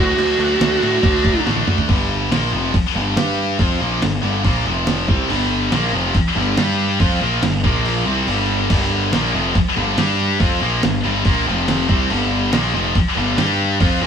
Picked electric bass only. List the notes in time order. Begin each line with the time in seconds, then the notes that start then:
Already playing: D2
0.18 D2
0.39 D2
0.61 D2
0.83 A2
1.03 D2
1.47 A1
1.68 D2
1.89 G1
2.31 A#1
2.53 F1
2.74 muted picked electric bass stroke
2.96 G1
3.16 G2
3.60 F2
3.81 A#1
4.02 G1
4.23 G1
4.45 A#1
4.66 F1
5.09 C2
5.30 G1
5.72 A#1
5.93 F1
6.15 muted picked electric bass stroke
6.36 G1
6.57 G2
7.01 F2
7.21 A#1
7.42 G1
7.64 A#1
8.07 C2
8.28 G1
8.70 G1
9.13 A#1
9.34 F1
9.56 muted picked electric bass stroke
9.77 G1
9.98 G2
10.41 F2
10.61 A#1
10.83 G1
11.05 G1
11.25 A#1
11.47 F1
11.89 C2
12.11 G1
12.54 A#1
12.74 F1
12.96 muted picked electric bass stroke
13.17 G1
13.38 G2
13.81 F2
14.02 A#1